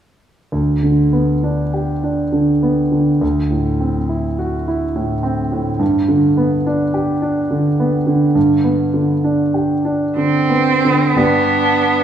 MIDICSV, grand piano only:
0, 0, Header, 1, 2, 480
1, 0, Start_track
1, 0, Key_signature, 1, "major"
1, 0, Tempo, 909091
1, 279, Time_signature, 3, 2, 24, 8
1, 1236, Tempo, 877193
1, 2196, Tempo, 852273
1, 4596, Tempo, 882353
1, 5076, Tempo, 927357
1, 5556, Tempo, 1001669
1, 6036, Tempo, 892857
1, 6502, End_track
2, 0, Start_track
2, 0, Title_t, "Grand piano"
2, 0, Program_c, 0, 0
2, 276, Note_on_c, 0, 38, 29
2, 391, Control_c, 0, 64, 127
2, 439, Note_on_c, 0, 50, 19
2, 595, Note_on_c, 0, 59, 21
2, 696, Note_off_c, 0, 50, 0
2, 757, Note_on_c, 0, 62, 22
2, 854, Note_off_c, 0, 59, 0
2, 917, Note_on_c, 0, 67, 25
2, 1013, Note_off_c, 0, 62, 0
2, 1074, Note_on_c, 0, 62, 24
2, 1171, Note_off_c, 0, 67, 0
2, 1227, Note_on_c, 0, 50, 25
2, 1330, Note_off_c, 0, 62, 0
2, 1392, Note_on_c, 0, 59, 22
2, 1488, Note_off_c, 0, 50, 0
2, 1552, Note_on_c, 0, 50, 23
2, 1650, Note_off_c, 0, 59, 0
2, 1692, Note_off_c, 0, 38, 0
2, 1713, Note_on_c, 0, 38, 31
2, 1714, Note_off_c, 0, 50, 0
2, 1725, Control_c, 0, 64, 0
2, 1803, Control_c, 0, 64, 127
2, 1873, Note_on_c, 0, 45, 23
2, 2037, Note_on_c, 0, 60, 23
2, 2130, Note_off_c, 0, 45, 0
2, 2194, Note_on_c, 0, 64, 25
2, 2295, Note_off_c, 0, 60, 0
2, 2360, Note_on_c, 0, 66, 27
2, 2456, Note_off_c, 0, 64, 0
2, 2525, Note_on_c, 0, 64, 31
2, 2618, Note_off_c, 0, 66, 0
2, 2680, Note_on_c, 0, 45, 29
2, 2779, Note_off_c, 0, 64, 0
2, 2835, Note_on_c, 0, 60, 30
2, 2936, Note_off_c, 0, 45, 0
2, 2997, Note_on_c, 0, 45, 30
2, 3093, Note_off_c, 0, 60, 0
2, 3135, Note_off_c, 0, 38, 0
2, 3153, Note_on_c, 0, 43, 40
2, 3158, Note_off_c, 0, 45, 0
2, 3168, Control_c, 0, 64, 0
2, 3249, Control_c, 0, 64, 127
2, 3316, Note_on_c, 0, 50, 30
2, 3479, Note_on_c, 0, 59, 30
2, 3574, Note_off_c, 0, 50, 0
2, 3643, Note_on_c, 0, 62, 31
2, 3736, Note_off_c, 0, 59, 0
2, 3798, Note_on_c, 0, 67, 32
2, 3899, Note_off_c, 0, 62, 0
2, 3957, Note_on_c, 0, 62, 33
2, 4056, Note_off_c, 0, 67, 0
2, 4117, Note_on_c, 0, 50, 29
2, 4213, Note_off_c, 0, 62, 0
2, 4280, Note_on_c, 0, 59, 27
2, 4372, Note_off_c, 0, 50, 0
2, 4432, Note_on_c, 0, 50, 30
2, 4532, Note_off_c, 0, 59, 0
2, 4570, Note_off_c, 0, 43, 0
2, 4593, Note_on_c, 0, 43, 41
2, 4605, Control_c, 0, 64, 0
2, 4686, Note_off_c, 0, 50, 0
2, 4700, Control_c, 0, 64, 127
2, 4751, Note_on_c, 0, 59, 25
2, 4913, Note_on_c, 0, 50, 29
2, 5010, Note_off_c, 0, 59, 0
2, 5077, Note_on_c, 0, 62, 28
2, 5171, Note_off_c, 0, 50, 0
2, 5233, Note_on_c, 0, 67, 26
2, 5329, Note_off_c, 0, 62, 0
2, 5393, Note_on_c, 0, 62, 29
2, 5490, Note_off_c, 0, 67, 0
2, 5556, Note_on_c, 0, 50, 23
2, 5650, Note_off_c, 0, 62, 0
2, 5712, Note_on_c, 0, 59, 24
2, 5815, Note_off_c, 0, 50, 0
2, 5883, Note_on_c, 0, 50, 21
2, 5974, Note_off_c, 0, 59, 0
2, 6015, Note_off_c, 0, 43, 0
2, 6028, Note_on_c, 0, 43, 27
2, 6032, Note_on_c, 0, 59, 23
2, 6033, Note_on_c, 0, 62, 23
2, 6036, Note_on_c, 0, 67, 25
2, 6037, Note_off_c, 0, 50, 0
2, 6046, Control_c, 0, 64, 0
2, 6148, Control_c, 0, 64, 127
2, 6502, Note_off_c, 0, 43, 0
2, 6502, Note_off_c, 0, 59, 0
2, 6502, Note_off_c, 0, 62, 0
2, 6502, Note_off_c, 0, 67, 0
2, 6502, End_track
0, 0, End_of_file